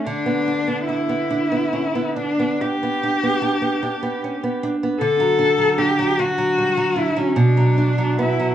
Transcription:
0.06 nylon-string guitar D3, cello D4
0.26 nylon-string guitar B3
0.48 nylon-string guitar D4
0.68 nylon-string guitar B3
0.87 nylon-string guitar D4, cello E4
1.09 nylon-string guitar B3
1.30 nylon-string guitar D4
1.52 nylon-string guitar B3
1.73 nylon-string guitar C#4
1.95 nylon-string guitar B3
2.16 cello D4, nylon-string guitar D4
2.39 nylon-string guitar B3
2.61 nylon-string guitar D4, cello G4
2.83 nylon-string guitar B3
3.03 nylon-string guitar D4
3.23 nylon-string guitar B3
3.42 nylon-string guitar D4
3.62 nylon-string guitar B3
3.83 nylon-string guitar D4
4.03 nylon-string guitar B3
4.24 nylon-string guitar C#4
4.44 nylon-string guitar B3
4.63 nylon-string guitar D4
4.83 nylon-string guitar B3
5.00 nylon-string guitar D3, cello A4
5.20 nylon-string guitar F#3
5.39 nylon-string guitar D4
5.58 nylon-string guitar F#3
5.78 nylon-string guitar D4, cello G4
5.99 nylon-string guitar F#3
6.19 nylon-string guitar D4, cello F#4
6.38 nylon-string guitar F#3
6.58 nylon-string guitar G3
6.77 nylon-string guitar F#3
6.96 nylon-string guitar D4, cello E4
7.16 nylon-string guitar F#3, cello C#4
7.36 nylon-string guitar B2, cello D4
7.57 nylon-string guitar F#3
7.78 nylon-string guitar D4
7.98 nylon-string guitar F#3
8.19 nylon-string guitar B3, cello E4
8.40 nylon-string guitar F#3

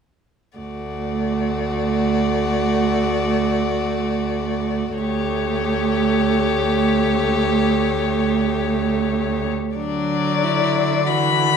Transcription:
0.58 cello D2, viola A3, violin F#4 D5
4.98 cello D2, viola A3, violin G4 C#5
9.77 cello D3, viola F#3, violin D4 D5
10.44 violin E4
11.07 viola E3, violin F#4 B5

